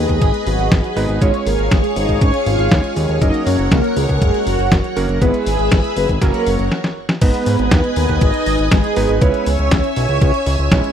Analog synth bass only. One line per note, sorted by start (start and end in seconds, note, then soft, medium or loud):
0.09 0.19 D#2 medium
0.22 0.32 G#1 loud
0.47 0.57 G#1 medium
0.59 0.69 G#1 medium
0.72 0.82 G#1 loud
0.96 1.07 G#1 medium
1.09 1.19 G#1 medium
1.21 1.32 G#1 loud
1.46 1.57 G#1 medium
1.59 1.69 G#1 medium
1.72 1.82 G#1 loud
1.96 2.07 G#1 medium
2.09 2.19 G#1 medium
2.21 2.32 G#1 loud
2.46 2.57 G#1 loud
2.59 2.69 G#1 medium
2.72 2.82 D#2 loud
2.97 3.07 D#2 loud
3.09 3.19 D#2 medium
3.22 3.32 F#1 loud
3.47 3.57 F#2 medium
3.59 3.69 F#1 medium
3.72 3.82 C#2 loud
3.96 4.07 C#2 loud
4.09 4.19 C#2 medium
4.22 4.32 F#1 loud
4.47 4.57 F#1 medium
4.59 4.69 F#1 medium
4.72 4.82 F#1 loud
4.96 5.07 F#1 medium
5.09 5.19 F#1 medium
5.22 5.32 G#1 loud
5.47 5.57 G#1 loud
5.59 5.70 G#1 medium
5.72 5.82 G#1 loud
5.97 6.07 F#1 medium
6.09 6.20 G#1 medium
6.22 6.32 F#1 loud
6.47 6.57 F#1 medium
6.59 6.70 F#1 medium
7.22 7.32 G#1 loud
7.47 7.57 G#2 loud
7.59 7.69 G#1 medium
7.72 7.82 D#2 loud
7.97 8.07 D#2 medium
8.09 8.19 D#2 medium
8.22 8.32 G#1 loud
8.47 8.57 G#1 medium
8.59 8.70 G#1 medium
8.72 8.82 G#1 loud
8.97 9.07 G#1 medium
9.09 9.20 G#1 medium
9.22 9.32 C#2 loud
9.47 9.57 C#2 medium
9.59 9.70 C#2 medium
9.72 9.82 C#2 loud
9.97 10.07 B1 loud
10.09 10.20 C#2 medium
10.22 10.32 C#2 loud
10.47 10.57 C#2 loud
10.59 10.70 C#2 medium
10.72 10.82 B1 loud